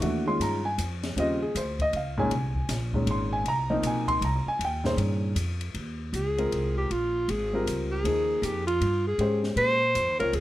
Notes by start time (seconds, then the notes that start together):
Already playing: C#6
0.01 D#2 E3 A3 D4 F#4, ride
0.26 D#3 G#3 C#4 F4 C6
0.39 G2 A#5, hi-hat pedal, ride
0.65 G#5
0.78 F2, hi-hat pedal, ride
1.03 snare, ride
1.16 D#2 C#3 G3 C4 F4 D#5, ride
1.42 G#4
1.55 D2 C5, hi-hat pedal, ride
1.79 D#5, kick, ride
1.93 C#2 F5, ride
2.17 A#2 D#3 G#3 C#4 G#5
2.31 C2, ride
2.55 kick
2.69 A#1, snare, hi-hat pedal, ride
2.93 A#2 D#3 G#3 C#4, kick
3.07 G#1, ride
3.11 C6
3.33 G#5
3.45 C2 A#5, ride
3.70 F3 A#3 C4 D#4 D#5
3.82 B1, hi-hat pedal, ride
3.87 G#5
4.08 C6, kick, ride
4.21 C2 A#5, ride
4.46 G#5, muted upright bass stroke
4.59 D#2, ride
4.65 G5
4.84 A#2 D#3 C#4 G#4 C5, snare
4.97 G2, ride
5.35 F2, hi-hat pedal, ride
5.61 ride
5.74 D#2, ride
6.13 C#2 G#4, hi-hat pedal, ride
6.37 G#3 C4 F4 A#4, ride
6.51 C2, ride
6.78 G4
6.90 A#1 F4, ride
7.28 G#1 G#4, ride
7.53 G3 C4 F4 A#4
7.67 C#2, hi-hat pedal, ride
7.91 G#4
8.04 D#2 F3 A#3 D#4 G#4, ride
8.42 F2 G4, hi-hat pedal, ride
8.67 F4, ride
8.81 G2, ride
9.07 G#4
9.18 G#2 G#3 C#4 G4 C5, ride
9.44 snare
9.56 A#2 C5, ride
9.95 F2, hi-hat pedal, ride
10.08 D#2
10.19 C#2 C4 F4 A#4 C#5, ride
10.33 D#2 G#4, ride